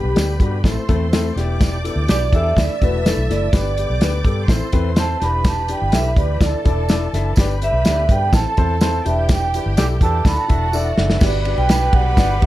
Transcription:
Already playing: D3 B3 G4 B4 B5
0.04 B1
0.16 D2 G3 B3 D4 G4, snare, closed hi-hat, tambourine
0.40 G2 G3 B3 D4 F#4, kick, closed hi-hat
0.64 A1 E3 A3 C4 E4 A4 C5 C6, kick, snare, closed hi-hat, tambourine
0.76 muted fingered electric bass stroke
0.89 E2 A3 C4 E4 A4, kick, closed hi-hat
1.13 A3 C4 E4 A4, snare, closed hi-hat, tambourine
1.35 E1 B3 D4 E4 G4 D5 D6, snare, closed hi-hat
1.61 kick, snare, closed hi-hat, tambourine
1.84 B3 D4 E4 A4, closed hi-hat
1.96 D2
2.08 B1 E3 B3 D4 E4 F#4 G4 D5, snare, closed hi-hat, tambourine
2.33 E2 E3 B3 D4 E4 G4 A4 E5, kick, closed hi-hat
2.56 D2 A3 D4 E4 A4 D5 E5 E6, kick, snare, closed hi-hat, tambourine
2.70 muted fingered electric bass stroke
2.81 E1 A3 D4 E4 F#4 B4, kick, closed hi-hat
3.06 A3 D4 E4 A4, snare, closed hi-hat, tambourine
3.17 B1
3.29 F#1 A3 D4 E4 A4 D5, snare, closed hi-hat
3.53 G1 D3 B3 D4 G4 B4 D5 D6, kick, snare, closed hi-hat, tambourine
3.78 B3 D4 G4 B4, closed hi-hat
3.90 B1
4.01 D2 B3 D4 G4 B4, snare, closed hi-hat, tambourine
4.24 G2 B3 D4 G4 A4, kick, closed hi-hat
4.48 A1 E3 C4 E4 A4 C5 C6, kick, snare, closed hi-hat, tambourine
4.62 muted fingered electric bass stroke
4.72 E2 C4 E4 A4 B4, kick, closed hi-hat
4.96 C4 E4 A4 C5 A5, snare, closed hi-hat, tambourine
5.20 E1 D4 E4 G4 B4 B5, snare, closed hi-hat
5.45 A5, kick, snare, closed hi-hat, tambourine
5.68 D4 E4 G4 D5 G5, closed hi-hat
5.82 G1
5.92 B1 D4 E4 G4 A4 E5, snare, closed hi-hat, tambourine
6.16 D2 D4 E4 G4 B4 D5, kick, closed hi-hat
6.40 D2 E3 D4 E4 A4 D5 A5, kick, snare, closed hi-hat, tambourine
6.54 muted fingered electric bass stroke
6.65 E1 D4 E4 A4 D5, kick, closed hi-hat
6.89 D4 E4 A4 D5, snare, closed hi-hat, tambourine
7.13 F#1 D4 E4 A4 E5, snare, closed hi-hat
7.36 G1 D3 B3 D4 G4 B4 D5 B5, kick, snare, closed hi-hat, tambourine
7.62 D4 G4 B4 E5, closed hi-hat
7.72 B1
7.85 D2 D4 G4 B4 D5, snare, closed hi-hat, tambourine
8.09 G2 D4 G4 B4 D5 G5, kick, closed hi-hat
8.32 A1 E3 C4 E4 A4 C5 A5, kick, snare, closed hi-hat, tambourine
8.46 muted fingered electric bass stroke
8.57 E2 C4 E4 A4 C5, kick, closed hi-hat
8.81 C4 E4 A4 C5, snare, closed hi-hat, tambourine
9.05 E1 D4 E4 G4 B4 E5 G5, closed hi-hat
9.29 G5, kick, snare, closed hi-hat, tambourine
9.54 D4 E4 G4 B4, closed hi-hat
9.66 G1
9.77 B1 E3 D4 E4 G4 A4, snare, closed hi-hat, tambourine
10.01 E2 E3 D4 E4 G4 A4 B4 A5, kick, closed hi-hat
10.24 D2 D4 E4 F#4 A4 D5 F#5 B5, kick, snare, closed hi-hat, tambourine
10.37 A5, muted fingered electric bass stroke
10.48 E1 D4 E4 A4 E5, kick, closed hi-hat
10.73 D4 E4 A4 D5 E5, tambourine
10.97 F#1 D4 E4 A4 D5, snare
11.10 snare
11.19 G1 D3 G3 B3 D4 F#4 G4 B4 D5 B5, kick, snare, crash, tambourine
11.45 D4 F#4 G4 B4 D5, ride
11.58 B1 G5
11.69 D4 F#4 G4 B4 D5, snare, ride, tambourine
11.93 B1 D4 F#4 G4 B4 D5 F#5, kick, ride
12.17 G1 D4 F#4 G4 B4 D5, kick, snare, ride, tambourine
12.42 A1 D4 F#4 G4 B4 D5, kick, ride

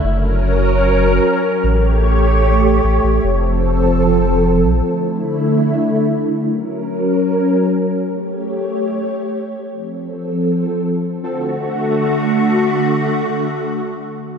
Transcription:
0.04 F#1 F#3 C#4 A#4
1.64 A1 A3 G4 C#5
2.84 A1
3.04 A1
3.24 F1 F3 C4 A4
4.64 C2
4.74 A1
4.84 D3 A3 E4
6.44 F#3 C#4 A#4
8.04 A3 G4 C#5
9.64 F3 C4 A4
11.24 D3 A3 F#4

